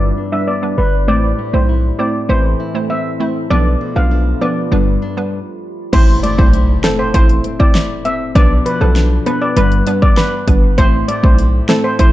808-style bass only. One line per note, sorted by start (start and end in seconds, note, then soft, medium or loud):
0.00 0.12 G1 loud
0.78 1.10 G1 medium
1.08 1.33 A1 loud
1.54 1.91 B1 medium
2.29 2.54 A1 medium
3.51 3.76 B1 loud
3.96 4.34 B1 medium
4.72 4.97 G1 loud
5.93 6.18 A1 loud
6.39 6.76 B1 medium
7.14 7.39 A1 loud
8.35 8.61 B1 loud
8.81 9.19 B1 medium
9.57 9.82 G1 loud
10.48 10.79 G1 medium
10.78 11.03 A1 loud
11.24 11.61 B1 medium
11.99 12.12 A1 loud